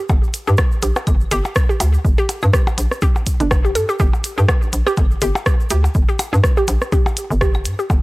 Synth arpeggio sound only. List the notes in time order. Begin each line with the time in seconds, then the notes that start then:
0.47 G4
0.82 G4
1.31 G4
1.69 G4
2.18 G4
2.53 G4
3.02 G4
3.40 D4
3.65 G4
3.75 A4
3.89 G4
4.00 G4
4.38 G4
4.87 G4
5.22 G4
5.70 G4
6.09 G4
6.57 G4
6.92 G4
7.41 G4
7.79 G4